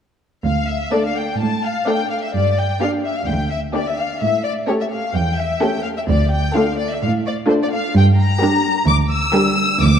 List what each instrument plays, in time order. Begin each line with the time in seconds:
0.44 cello section D2, violin section F5
0.69 violin section E5
0.92 viola section A3 D4, violin section A4 D5
1.05 violin section F5
1.15 violin section G5
1.39 cello section A2, violin section A5
1.64 violin section F5
1.87 viola section A3 D4, violin section A4 D5 G5
2.10 violin section F5
2.23 violin section E5
2.34 cello section G2, violin section D5
2.57 violin section G5
2.81 viola section A#3 D4, violin section G4 D5 F5
3.04 violin section E5
3.17 violin section F5
3.27 cello section D2, violin section G5
3.51 violin section E5
3.74 viola section A#3 D4, violin section G4 D5
3.87 violin section E5
3.98 violin section F5
4.21 cello section A2, violin section E5
4.45 violin section D5
4.67 viola section A3 C#4, violin section G4 A4 C#5
4.81 violin section E5
4.91 violin section F5
5.15 cello section E2, violin section G5
5.38 violin section E5
5.61 viola section A3 C#4, violin section G4 A4 G5
5.84 violin section F5
5.97 violin section E5
6.08 cello section D2, violin section D5
6.31 violin section G5
6.54 viola section A3 D4, violin section F4 A4 F5
6.77 violin section D5
6.90 violin section E5
7.02 cello section A2, violin section F5
7.26 violin section D5
7.48 viola section A3 D4, violin section F4 A4 C5
7.62 violin section D5
7.73 violin section F5
7.95 cello section G2, violin section G5
8.19 violin section A#5
8.40 viola section G3 D4, violin section G4 A#4
8.87 cello section D2, violin section D6
9.10 violin section E6
9.33 viola section G3 D4, violin section G4 A#4
9.80 cello section D2, violin section D6